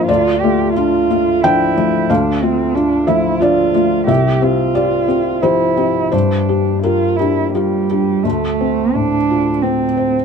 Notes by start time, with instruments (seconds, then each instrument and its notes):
Already playing: felt piano G2 F3 A#3 D4 F4 G4
0.07 felt piano D2 D5, cello F4
0.40 felt piano A3 F4, cello G4
0.74 felt piano D4 F4, cello F4
1.10 felt piano A3 F4
1.43 felt piano F3 D4 G5, cello E4
1.77 felt piano F3 A3
2.10 felt piano D2 F5, cello D4
2.42 felt piano A3 F4, cello C4
2.75 felt piano D4 F4, cello D4
3.07 felt piano F3 A3 E5, cello E4
3.40 felt piano D4 F4 D5, cello F4
3.74 felt piano A3 F4
4.07 felt piano C2 E5, cello G4
4.42 felt piano C4 G4, cello F4
4.75 felt piano F4 G4 D5
5.08 felt piano C4 G4
5.42 felt piano F3 G4 C5, cello E4
5.77 felt piano C4 G4
6.12 felt piano G2 C5, cello D4
6.49 felt piano D4 G4
6.83 cello F4, felt piano F4 G4 A#4
7.17 felt piano D4 G4, cello E4
7.55 cello G3, felt piano F4 G4
7.90 felt piano D4 G4
8.24 felt piano D2, cello A3
8.60 felt piano C4
8.94 felt piano A2, cello D4
9.30 felt piano F4
9.62 cello C4, felt piano C4
9.97 felt piano C5